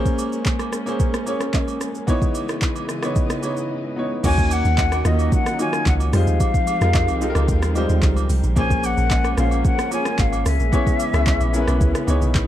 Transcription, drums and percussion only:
0.05 kick, shaker
0.18 high agogo, shaker
0.32 shaker
0.45 kick, clap, shaker
0.59 cross-stick, high agogo, shaker
0.73 cross-stick, shaker
0.86 high agogo, shaker
1.00 kick, shaker
1.14 cross-stick, shaker
1.27 high agogo, shaker
1.41 cross-stick, shaker
1.54 kick, clap, low woodblock, shaker
1.68 high agogo, shaker
1.81 cross-stick, shaker
1.95 shaker
2.08 kick, high agogo, shaker
2.22 kick, shaker
2.35 high agogo, shaker
2.49 cross-stick, shaker
2.62 kick, clap, shaker
2.76 high agogo, shaker
2.89 cross-stick, shaker
3.02 cross-stick, high agogo, shaker
3.16 kick, shaker
3.30 cross-stick, shaker
3.43 high agogo, shaker
3.57 shaker
4.24 kick, crash, high agogo, shaker
4.38 kick, shaker
4.51 high agogo, shaker
4.65 shaker
4.78 kick, clap, low woodblock, shaker
4.92 cross-stick, high agogo, shaker
5.05 cross-stick, shaker
5.19 high agogo, shaker
5.32 kick, shaker
5.46 cross-stick, shaker
5.59 high agogo, shaker
5.73 cross-stick, shaker
5.86 kick, clap, shaker
6.00 high agogo, shaker
6.13 cross-stick, open hi-hat, shaker
6.27 shaker
6.40 kick, high agogo, shaker
6.54 kick, shaker
6.67 high agogo, shaker
6.81 cross-stick, shaker
6.94 kick, clap, low woodblock, shaker
7.08 high agogo, shaker
7.21 shaker
7.35 cross-stick, high agogo, shaker
7.48 kick, shaker
7.62 cross-stick, shaker
7.75 high agogo, shaker
7.89 shaker
8.02 kick, clap, shaker
8.16 high agogo, shaker
8.30 open hi-hat, shaker
8.44 shaker
8.56 kick, high agogo, shaker
8.70 kick, shaker
8.84 high agogo, shaker
8.97 shaker
9.10 kick, clap, low woodblock, shaker
9.24 cross-stick, high agogo, shaker
9.38 cross-stick, shaker
9.51 high agogo, shaker
9.65 kick, shaker
9.79 cross-stick, shaker
9.91 high agogo, shaker
10.05 cross-stick, shaker
10.19 kick, clap, shaker
10.33 high agogo, shaker
10.46 cross-stick, open hi-hat, shaker
10.60 shaker
10.73 kick, high agogo, shaker
10.87 kick, shaker
11.00 high agogo, shaker
11.14 cross-stick, shaker
11.27 kick, clap, low woodblock, shaker
11.41 high agogo, shaker
11.54 shaker
11.67 cross-stick, high agogo, shaker
11.81 kick, shaker
11.95 cross-stick, shaker
12.08 high agogo, shaker
12.22 shaker
12.35 kick, clap, shaker

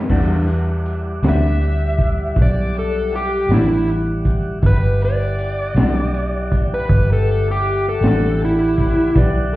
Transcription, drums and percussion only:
0.09 kick, crash
0.48 closed hi-hat
0.86 closed hi-hat
1.23 snare, closed hi-hat
1.61 closed hi-hat
1.98 kick, closed hi-hat
2.36 kick, closed hi-hat
2.75 closed hi-hat
3.12 closed hi-hat
3.50 snare, closed hi-hat
3.88 closed hi-hat
4.25 kick, closed hi-hat
4.63 kick, closed hi-hat
5.01 closed hi-hat
5.39 closed hi-hat
5.76 snare, closed hi-hat
6.14 closed hi-hat
6.52 kick, closed hi-hat
6.89 kick, closed hi-hat
7.27 closed hi-hat
7.66 closed hi-hat
8.03 snare, closed hi-hat
8.41 closed hi-hat
8.78 kick, snare, closed hi-hat
9.16 kick, closed hi-hat

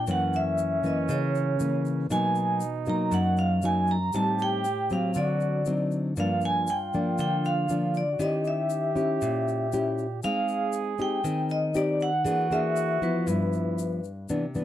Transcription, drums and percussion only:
0.07 shaker
0.33 shaker
0.58 shaker
0.84 shaker
1.09 shaker
1.35 shaker
1.60 shaker
1.85 shaker
2.10 shaker
2.35 shaker
2.60 shaker
2.86 shaker
3.12 shaker
3.37 shaker
3.62 shaker
3.87 shaker
4.13 shaker
4.39 shaker
4.64 shaker
4.90 shaker
5.14 shaker
5.40 shaker
5.65 shaker
5.91 shaker
6.17 shaker
6.41 shaker
6.67 shaker
6.93 shaker
7.18 shaker
7.45 shaker
7.69 shaker
7.94 shaker
8.20 shaker
8.44 shaker
8.70 shaker
8.96 shaker
9.21 shaker
9.48 shaker
9.72 shaker
9.98 shaker
10.23 shaker
10.48 shaker
10.73 shaker
10.98 shaker
11.24 shaker
11.49 shaker
11.74 shaker
12.00 shaker
12.26 shaker
12.51 shaker
12.76 shaker
13.02 shaker
13.27 shaker
13.53 shaker
13.78 shaker
14.04 shaker
14.29 shaker
14.55 shaker

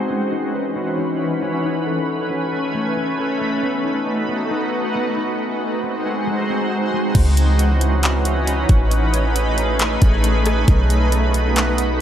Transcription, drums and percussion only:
7.15 kick, closed hi-hat, crash
7.37 closed hi-hat
7.59 closed hi-hat
7.81 closed hi-hat
8.03 clap, closed hi-hat
8.25 closed hi-hat
8.47 closed hi-hat
8.69 kick, closed hi-hat
8.91 closed hi-hat
9.14 closed hi-hat
9.36 closed hi-hat
9.58 closed hi-hat
9.79 clap, closed hi-hat
10.02 kick, closed hi-hat
10.24 closed hi-hat
10.46 cross-stick, closed hi-hat
10.68 kick, closed hi-hat
10.90 closed hi-hat
11.12 closed hi-hat
11.34 closed hi-hat
11.56 clap, closed hi-hat
11.78 closed hi-hat

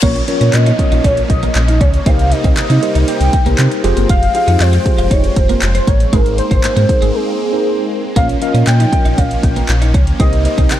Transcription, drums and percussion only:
0.03 kick, closed hi-hat, crash
0.16 closed hi-hat
0.28 closed hi-hat
0.41 closed hi-hat
0.53 clap, closed hi-hat
0.66 closed hi-hat
0.79 kick, closed hi-hat
0.92 closed hi-hat
1.04 kick, closed hi-hat
1.17 closed hi-hat
1.30 kick, closed hi-hat
1.43 closed hi-hat
1.55 clap, closed hi-hat
1.68 closed hi-hat
1.81 kick, closed hi-hat
1.94 closed hi-hat
2.06 kick, closed hi-hat
2.19 closed hi-hat
2.32 closed hi-hat
2.44 kick, closed hi-hat
2.57 clap, closed hi-hat
2.70 closed hi-hat
2.83 closed hi-hat
2.95 closed hi-hat
3.08 closed hi-hat
3.21 closed hi-hat
3.33 kick, closed hi-hat
3.46 closed hi-hat
3.58 clap, closed hi-hat
3.71 closed hi-hat
3.84 closed hi-hat
3.97 closed hi-hat
4.09 kick, closed hi-hat
4.23 closed hi-hat
4.35 closed hi-hat
4.48 closed hi-hat
4.60 clap, closed hi-hat
4.73 closed hi-hat
4.86 kick, closed hi-hat
4.98 closed hi-hat
5.11 kick, closed hi-hat
5.24 closed hi-hat
5.36 kick, closed hi-hat
5.49 closed hi-hat
5.62 clap, closed hi-hat
5.75 closed hi-hat
5.87 kick, closed hi-hat
6.00 closed hi-hat
6.13 kick, closed hi-hat
6.26 closed hi-hat
6.38 closed hi-hat
6.51 kick, closed hi-hat
6.64 clap, closed hi-hat
6.77 closed hi-hat
6.89 kick, closed hi-hat
7.02 closed hi-hat
8.16 kick, closed hi-hat
8.29 closed hi-hat
8.42 closed hi-hat
8.55 closed hi-hat
8.67 clap, closed hi-hat
8.80 closed hi-hat
8.93 kick, closed hi-hat
9.06 closed hi-hat
9.18 kick, closed hi-hat
9.31 closed hi-hat
9.43 kick, closed hi-hat
9.56 closed hi-hat
9.69 clap, closed hi-hat
9.82 closed hi-hat
9.94 kick, closed hi-hat
10.07 closed hi-hat
10.20 kick, closed hi-hat
10.33 closed hi-hat
10.45 closed hi-hat
10.58 kick, closed hi-hat
10.71 clap, closed hi-hat

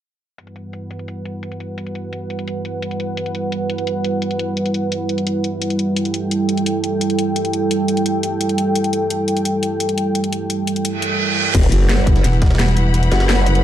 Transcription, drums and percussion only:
0.38 closed hi-hat
0.47 closed hi-hat
0.56 closed hi-hat
0.73 closed hi-hat
0.91 closed hi-hat
0.99 closed hi-hat
1.08 closed hi-hat
1.25 closed hi-hat
1.43 closed hi-hat
1.52 closed hi-hat
1.60 closed hi-hat
1.78 closed hi-hat
1.87 closed hi-hat
1.95 closed hi-hat
2.13 closed hi-hat
2.30 closed hi-hat
2.39 closed hi-hat
2.48 closed hi-hat
2.65 closed hi-hat
2.82 closed hi-hat
2.91 closed hi-hat
3.00 closed hi-hat
3.17 closed hi-hat
3.26 closed hi-hat
3.35 closed hi-hat
3.52 closed hi-hat
3.70 closed hi-hat
3.78 closed hi-hat
3.87 closed hi-hat
4.05 closed hi-hat
4.22 closed hi-hat
4.31 closed hi-hat
4.39 closed hi-hat
4.57 closed hi-hat
4.66 closed hi-hat
4.74 closed hi-hat
4.92 closed hi-hat
5.09 closed hi-hat
5.18 closed hi-hat
5.27 closed hi-hat
5.44 closed hi-hat
5.62 closed hi-hat
5.70 closed hi-hat
5.79 closed hi-hat
5.96 closed hi-hat
6.05 closed hi-hat
6.14 closed hi-hat
6.31 closed hi-hat
6.49 closed hi-hat
6.58 closed hi-hat
6.66 closed hi-hat
6.84 closed hi-hat
7.01 closed hi-hat
7.10 closed hi-hat
7.19 closed hi-hat
7.36 closed hi-hat
7.45 closed hi-hat
7.53 closed hi-hat
7.71 closed hi-hat
7.88 closed hi-hat
7.97 closed hi-hat
8.06 closed hi-hat
8.23 closed hi-hat
8.41 closed hi-hat
8.49 closed hi-hat
8.58 closed hi-hat
8.75 closed hi-hat
8.84 closed hi-hat
8.93 closed hi-hat
9.10 closed hi-hat
9.28 closed hi-hat
9.37 closed hi-hat
9.45 closed hi-hat
9.63 closed hi-hat
9.80 closed hi-hat
9.89 closed hi-hat
9.98 closed hi-hat
10.15 closed hi-hat
10.24 closed hi-hat
10.33 closed hi-hat
10.50 closed hi-hat
10.67 closed hi-hat
10.76 closed hi-hat
10.85 closed hi-hat
11.02 closed hi-hat
11.55 kick, closed hi-hat, crash
11.63 closed hi-hat
11.72 closed hi-hat
11.89 snare, closed hi-hat
11.98 cross-stick
12.07 kick, cross-stick, closed hi-hat
12.16 snare, closed hi-hat
12.24 snare, closed hi-hat
12.33 closed hi-hat
12.42 kick, snare, closed hi-hat
12.46 snare, closed hi-hat
12.50 cross-stick, snare, closed hi-hat
12.55 snare, closed hi-hat
12.59 snare, closed hi-hat
12.68 cross-stick, closed hi-hat
12.77 closed hi-hat
12.94 closed hi-hat
13.03 closed hi-hat
13.12 snare, closed hi-hat
13.20 snare, closed hi-hat
13.29 snare, closed hi-hat
13.38 cross-stick
13.46 cross-stick, closed hi-hat
13.55 closed hi-hat

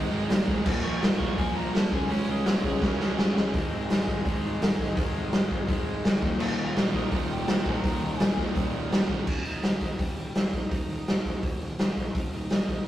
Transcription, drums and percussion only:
0.30 snare, open hi-hat
0.48 kick
0.66 kick, crash
1.02 snare, open hi-hat
1.20 kick
1.38 kick, open hi-hat
1.75 snare, open hi-hat
1.92 kick
2.10 open hi-hat
2.46 snare, open hi-hat
2.64 kick
2.82 kick, snare
3.00 snare
3.19 snare
3.37 snare
3.54 kick, open hi-hat
3.90 snare, open hi-hat
4.08 kick
4.26 kick, open hi-hat
4.62 snare, open hi-hat
4.79 kick
4.97 kick, open hi-hat
5.32 snare, open hi-hat
5.51 kick
5.69 kick, open hi-hat
6.05 snare, open hi-hat
6.22 kick
6.40 crash
6.76 snare, open hi-hat
6.94 kick
7.11 kick, open hi-hat
7.48 snare, open hi-hat
7.66 kick
7.84 kick, open hi-hat
8.20 snare, open hi-hat
8.38 kick
8.56 kick, open hi-hat
8.92 snare, open hi-hat
9.09 kick
9.27 kick, crash
9.45 open hi-hat
9.63 snare, open hi-hat
9.81 kick, open hi-hat
9.99 kick, open hi-hat
10.17 open hi-hat
10.35 snare, open hi-hat
10.53 kick, open hi-hat
10.71 kick, open hi-hat
10.90 open hi-hat
11.08 snare, open hi-hat
11.25 kick, open hi-hat
11.43 kick, open hi-hat
11.62 open hi-hat
11.79 snare, open hi-hat
11.97 kick, open hi-hat
12.15 kick, open hi-hat
12.33 open hi-hat
12.50 snare, open hi-hat
12.69 kick, open hi-hat

